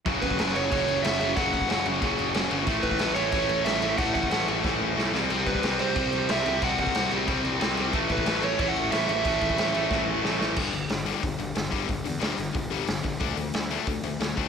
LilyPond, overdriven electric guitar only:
\new Staff \with { instrumentName = "Overdriven electric guitar" } { \time 4/4 \key g \lydian \tempo 4 = 182 r8 b'4 cis''4. e''4 | fis''8 fis''4 r2 r8 | r8 b'4 cis''4. e''4 | fis''8 fis''4 r2 r8 |
r8 b'4 c''4. e''4 | fis''8 fis''4 r2 r8 | r8 b'4 cis''8 cis''16 fis''8. e''8 e''8~ | e''2.~ e''8 r8 |
r1 | r1 | r1 | }